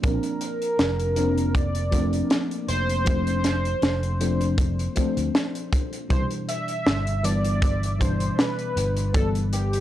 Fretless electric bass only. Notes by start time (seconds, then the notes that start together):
0.04 A#1
0.79 F1
2.69 F1
3.82 F1
5.17 D2
6.10 C2
6.86 G1
8.76 G1